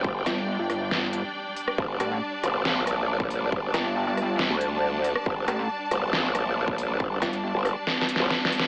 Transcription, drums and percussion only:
0.04 kick
0.26 cross-stick, snare, closed hi-hat
0.70 cross-stick, open hi-hat
0.91 snare
1.13 closed hi-hat
1.57 open hi-hat
1.68 cross-stick
1.78 kick
2.00 cross-stick, closed hi-hat
2.44 cross-stick, closed hi-hat
2.65 snare
2.87 cross-stick, closed hi-hat
3.20 kick
3.30 open hi-hat
3.52 kick
3.74 cross-stick, snare, closed hi-hat
4.17 cross-stick, open hi-hat
4.39 snare
4.61 closed hi-hat
5.04 open hi-hat
5.16 cross-stick
5.26 kick
5.48 cross-stick, closed hi-hat
5.91 cross-stick, closed hi-hat
6.13 snare
6.35 cross-stick, closed hi-hat
6.68 kick
6.78 open hi-hat
7.00 kick
7.22 kick, cross-stick, snare, closed hi-hat
7.33 closed hi-hat
7.65 cross-stick, open hi-hat
7.87 snare
8.01 snare
8.09 closed hi-hat
8.16 snare
8.31 snare
8.45 snare
8.52 open hi-hat
8.60 snare

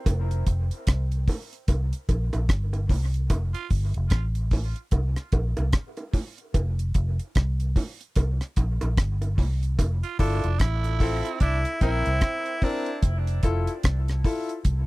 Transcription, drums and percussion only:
0.06 kick, closed hi-hat, high bongo
0.31 closed hi-hat
0.47 kick, closed hi-hat
0.71 closed hi-hat
0.87 kick, cross-stick, closed hi-hat
1.12 closed hi-hat
1.28 kick, open hi-hat, high bongo, low bongo
1.53 closed hi-hat
1.68 kick, closed hi-hat, high bongo
1.93 closed hi-hat
2.09 kick, closed hi-hat, high bongo
2.33 closed hi-hat, high bongo
2.49 kick, cross-stick, closed hi-hat
2.73 closed hi-hat, high bongo
2.89 kick, open hi-hat, low bongo
3.14 closed hi-hat
3.30 kick, closed hi-hat, high bongo
3.54 closed hi-hat
3.70 kick, open hi-hat
3.94 closed hi-hat
4.10 kick, cross-stick, closed hi-hat
4.35 closed hi-hat
4.51 kick, open hi-hat, high bongo, low bongo
4.76 closed hi-hat
4.91 kick, closed hi-hat, high bongo
5.16 cross-stick, closed hi-hat
5.32 kick, closed hi-hat, high bongo
5.57 closed hi-hat, high bongo
5.73 kick, cross-stick, closed hi-hat
5.97 closed hi-hat, high bongo
6.13 kick, open hi-hat, low bongo
6.38 closed hi-hat
6.54 kick, closed hi-hat, high bongo
6.79 closed hi-hat
6.94 kick, closed hi-hat
7.19 closed hi-hat
7.35 kick, cross-stick, closed hi-hat
7.60 closed hi-hat
7.76 kick, open hi-hat, high bongo, low bongo
8.01 closed hi-hat
8.16 kick, closed hi-hat, high bongo
8.41 cross-stick, closed hi-hat
8.56 kick, closed hi-hat, high bongo
8.81 closed hi-hat, high bongo
8.97 kick, cross-stick, closed hi-hat
9.21 closed hi-hat, high bongo
9.38 kick, open hi-hat, low bongo
9.63 closed hi-hat
9.79 kick, closed hi-hat, high bongo
10.03 closed hi-hat
10.19 kick, open hi-hat
10.44 closed hi-hat
10.59 kick, cross-stick, closed hi-hat
10.84 closed hi-hat
11.00 kick, open hi-hat
11.25 closed hi-hat
11.40 kick, closed hi-hat
11.65 closed hi-hat
11.81 kick, closed hi-hat
12.06 closed hi-hat
12.21 kick, cross-stick, closed hi-hat
12.46 closed hi-hat
12.62 kick, open hi-hat
12.86 closed hi-hat
13.02 kick, closed hi-hat
13.27 closed hi-hat
13.43 kick, closed hi-hat
13.67 closed hi-hat
13.83 kick, cross-stick, closed hi-hat
14.08 cross-stick, closed hi-hat
14.24 kick, open hi-hat
14.49 closed hi-hat
14.65 kick, closed hi-hat

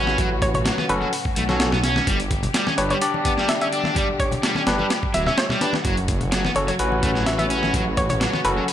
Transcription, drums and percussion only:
0.06 snare, high conga
0.18 kick, closed hi-hat, muted conga
0.42 kick, closed hi-hat
0.54 closed hi-hat, low conga
0.65 snare, closed hi-hat, muted conga
0.78 snare, high conga
0.89 closed hi-hat
1.01 muted conga
1.13 open hi-hat
1.25 kick
1.36 closed hi-hat, high conga
1.49 snare, muted conga
1.60 snare, closed hi-hat
1.72 snare, low conga
1.84 snare, closed hi-hat, muted conga
1.96 snare, high conga
2.07 kick, closed hi-hat
2.20 closed hi-hat
2.31 kick, closed hi-hat, muted conga
2.43 closed hi-hat, low conga
2.54 snare, closed hi-hat
2.66 snare, muted conga, high conga
2.78 closed hi-hat
2.90 closed hi-hat
3.02 closed hi-hat
3.14 muted conga
3.25 kick, closed hi-hat, high conga
3.38 snare
3.48 snare, closed hi-hat, muted conga
3.61 closed hi-hat
3.72 closed hi-hat
3.84 snare, high conga
3.95 kick, closed hi-hat, muted conga
4.20 kick, closed hi-hat
4.32 closed hi-hat, muted conga, low conga
4.43 snare, closed hi-hat
4.55 snare, high conga
4.67 snare, closed hi-hat
4.79 muted conga
4.90 snare, closed hi-hat
5.03 kick
5.14 closed hi-hat, muted conga, high conga
5.26 snare, low conga
5.38 snare, closed hi-hat
5.49 snare, low conga
5.61 snare, closed hi-hat, muted conga
5.73 snare, high conga
5.85 kick, closed hi-hat
5.97 closed hi-hat
6.08 kick, closed hi-hat, muted conga
6.21 closed hi-hat, low conga
6.32 snare, closed hi-hat
6.44 snare, high conga
6.55 closed hi-hat, muted conga
6.68 closed hi-hat
6.79 closed hi-hat
6.92 muted conga
7.03 kick, closed hi-hat, high conga
7.15 snare
7.26 snare, closed hi-hat
7.39 closed hi-hat, muted conga
7.50 closed hi-hat
7.63 snare, high conga
7.74 kick, closed hi-hat, muted conga
7.97 kick, closed hi-hat
8.09 closed hi-hat, low conga
8.21 snare, closed hi-hat, muted conga
8.33 snare, high conga
8.45 closed hi-hat
8.57 muted conga
8.68 open hi-hat

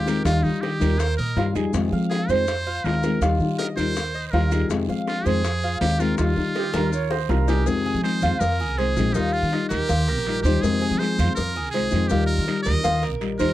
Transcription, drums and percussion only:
0.07 high bongo, short guiro, maracas
0.25 high bongo, long guiro, maracas
0.45 high bongo, maracas
0.63 high bongo, short guiro, maracas
0.81 high bongo, short guiro, maracas
0.99 high bongo, long guiro, maracas
1.18 maracas
1.37 high bongo, low bongo, short guiro, maracas
1.56 high bongo, short guiro, maracas
1.74 high bongo, long guiro, maracas
1.92 high bongo, maracas
2.10 high bongo, short guiro, maracas
2.29 high bongo, short guiro, maracas
2.47 high bongo, long guiro, maracas
2.66 maracas
2.85 high bongo, low bongo, short guiro, maracas
3.03 high bongo, short guiro, maracas
3.22 high bongo, long guiro, maracas
3.40 high bongo, maracas
3.59 high bongo, short guiro, maracas
3.78 high bongo, short guiro, maracas
3.96 high bongo, long guiro, maracas
4.14 maracas
4.32 high bongo, low bongo, short guiro, maracas
4.51 high bongo, short guiro, maracas
4.70 high bongo, long guiro, maracas
4.89 high bongo, maracas
5.07 high bongo, short guiro, maracas
5.25 high bongo, short guiro, maracas
5.44 high bongo, long guiro, maracas
5.63 maracas
5.81 high bongo, low bongo, short guiro, maracas
5.99 high bongo, short guiro, maracas
6.18 high bongo, long guiro, maracas
6.36 high bongo, maracas
6.55 high bongo, short guiro, maracas
6.74 high bongo, short guiro, maracas
6.93 long guiro, maracas
7.11 high bongo, maracas
7.29 low bongo, short guiro, maracas
7.48 low bongo, short guiro, maracas
7.66 cowbell, long guiro, maracas
7.85 maracas
8.03 cowbell, short guiro, maracas
8.21 short guiro, maracas
8.40 cowbell, long guiro, maracas
8.60 maracas
8.78 cowbell, short guiro, maracas
8.97 short guiro, maracas
9.15 cowbell, long guiro, maracas
9.33 maracas
9.52 cowbell, short guiro, maracas
9.71 cowbell, short guiro, maracas
9.89 cowbell, long guiro, maracas
10.07 cowbell, maracas
10.26 cowbell, short guiro, maracas
10.45 short guiro, maracas
10.64 cowbell, long guiro, maracas
10.83 maracas
11.00 cowbell, short guiro, maracas
11.19 short guiro, maracas
11.37 cowbell, long guiro, maracas
11.56 maracas
11.73 cowbell, short guiro, maracas
11.91 short guiro, maracas
12.09 cowbell, long guiro, maracas
12.28 maracas
12.47 cowbell, short guiro, maracas
12.65 cowbell, short guiro, maracas
12.84 cowbell, long guiro, maracas
13.03 cowbell, maracas
13.21 cowbell, short guiro, maracas
13.39 short guiro, maracas

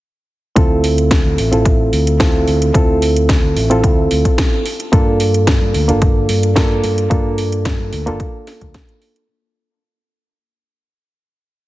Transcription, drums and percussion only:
0.56 kick, closed hi-hat
0.84 open hi-hat
0.98 closed hi-hat
1.11 kick, snare, closed hi-hat
1.38 open hi-hat
1.53 closed hi-hat
1.65 kick, closed hi-hat
1.93 open hi-hat
2.07 closed hi-hat
2.20 kick, snare, closed hi-hat
2.48 open hi-hat
2.62 closed hi-hat
2.74 kick, closed hi-hat
3.02 open hi-hat
3.16 closed hi-hat
3.29 kick, snare, closed hi-hat
3.57 open hi-hat
3.71 closed hi-hat
3.84 kick, closed hi-hat
4.11 open hi-hat
4.25 kick, closed hi-hat
4.38 kick, snare, closed hi-hat
4.66 open hi-hat
4.80 closed hi-hat
4.93 kick, closed hi-hat
5.20 open hi-hat
5.34 closed hi-hat
5.47 kick, snare, closed hi-hat
5.74 open hi-hat
5.89 closed hi-hat
6.02 kick, closed hi-hat
6.29 open hi-hat
6.43 closed hi-hat
6.56 kick, snare, closed hi-hat
6.84 open hi-hat
6.98 closed hi-hat
7.11 kick, closed hi-hat
7.38 open hi-hat
7.52 closed hi-hat
7.65 kick, snare, closed hi-hat
7.93 open hi-hat
8.07 closed hi-hat
8.20 kick, closed hi-hat
8.47 snare, open hi-hat
8.61 kick, closed hi-hat
8.74 kick, snare, closed hi-hat
8.89 closed hi-hat
9.02 open hi-hat
9.16 closed hi-hat

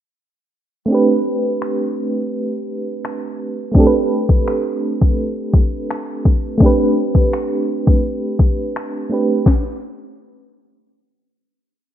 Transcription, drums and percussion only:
1.62 finger snap
3.05 finger snap
3.75 kick
4.29 kick
4.48 finger snap
5.01 kick
5.54 kick
5.91 finger snap
6.25 kick
6.60 kick
7.15 kick
7.33 finger snap
7.87 kick
8.39 kick
8.76 finger snap
9.46 kick, snare

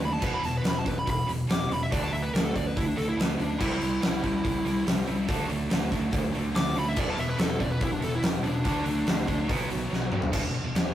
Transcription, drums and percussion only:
0.00 open hi-hat
0.22 kick, crash
0.44 open hi-hat
0.64 snare, open hi-hat
0.86 kick, open hi-hat
1.07 kick, open hi-hat
1.29 open hi-hat
1.50 snare, open hi-hat
1.72 open hi-hat
1.92 kick, open hi-hat
2.14 open hi-hat
2.35 snare, open hi-hat
2.56 kick, open hi-hat
2.77 kick, open hi-hat
2.98 snare, open hi-hat
3.20 snare, open hi-hat
3.40 open hi-hat
3.61 kick, crash
3.82 open hi-hat
4.02 snare, open hi-hat
4.24 kick, open hi-hat
4.45 kick, open hi-hat
4.66 snare, open hi-hat
4.87 snare, open hi-hat
5.07 open hi-hat
5.28 kick, open hi-hat
5.50 open hi-hat
5.70 snare, open hi-hat
5.92 kick, open hi-hat
6.13 kick, open hi-hat
6.35 open hi-hat
6.55 snare, open hi-hat
6.76 open hi-hat
6.96 kick, crash
7.18 open hi-hat
7.39 snare, open hi-hat
7.60 kick, open hi-hat
7.81 kick, open hi-hat
8.02 snare, open hi-hat
8.23 snare, open hi-hat
8.44 open hi-hat
8.64 kick, open hi-hat
8.86 open hi-hat
9.07 snare, open hi-hat
9.27 kick, open hi-hat
9.49 kick, open hi-hat
9.70 snare, open hi-hat
9.93 snare
10.12 mid tom
10.22 floor tom
10.33 kick, crash
10.75 snare, crash
10.86 snare

